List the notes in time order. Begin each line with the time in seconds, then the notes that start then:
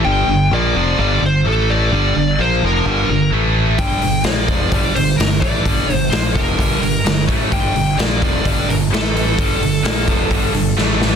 0.04 G1 G2 D3 G3 G5
0.27 G1 G2 D3
0.51 A#1 A#2 F3 A#3 D5
0.75 F1 F2 C3 F3
0.98 G1 G2 D3 G3 D5
1.21 G1 G2 D3
1.26 C5
1.45 A1 A2 E3 A3 A4
1.70 D5
1.92 G1 G2 D3 G3
2.16 G1 G2 D3
2.39 A#1 A#2 F3 A#3 C5
2.62 F1 F2 C3 F3 A#4
2.86 G1 G2 D3 G3
3.08 G1 G2 D3
3.31 A1 A2 E3 A3
3.78 G1 G2 D3 G3 G5, kick, open hi-hat
4.01 G1 G2 D3, open hi-hat
4.24 A#1 A#2 F3 A#3 D5, snare, open hi-hat
4.48 F1 F2 C3 F3, kick, open hi-hat
4.70 G1 G2 D3 D5, kick, open hi-hat
4.74 G3
4.95 G1 G2 D3 C5, open hi-hat
5.17 G1 G2 D3 A#4, snare, open hi-hat
5.40 A1 A2 E3 A3 D5, kick, open hi-hat
5.64 G1 G2 D3 G3, kick, open hi-hat
5.88 G1 G2 D3, open hi-hat
5.94 C5
6.10 A#1 A#2 F3 A#3 C5, snare, open hi-hat
6.34 F1 F2 C3 F3 A#4, kick, open hi-hat
6.56 G1 G2 D3 G3, kick, open hi-hat
6.81 G1 G2 D3, open hi-hat
7.04 G1 G2 D3, snare, open hi-hat
7.28 A1 A2 E3 A3, kick, open hi-hat
7.51 G1 G2 D3 G3 G5, kick, open hi-hat
7.75 G1 G2 D3, open hi-hat
7.98 A#1 A#2 F3 A#3 D5, snare, open hi-hat
8.20 F1 F2 C3 F3, kick, open hi-hat
8.43 G1 G2 D3 G3 D5, kick, open hi-hat
8.68 G1 G2 D3 A#4, open hi-hat
8.91 A1 A2 E3 A3 A4, open hi-hat
8.95 snare
9.17 open hi-hat
9.38 G1 G2 D3 G3, kick, open hi-hat
9.60 G1 G2 D3, open hi-hat
9.84 A#1 A#2 F3 A#3, snare, open hi-hat
10.07 F1 F2 C3 F3, kick, open hi-hat
10.29 G1 G2 D3 G3, kick, open hi-hat
10.53 G1 G2 D3, open hi-hat
10.77 A1 A2 E3 A3, snare
11.02 snare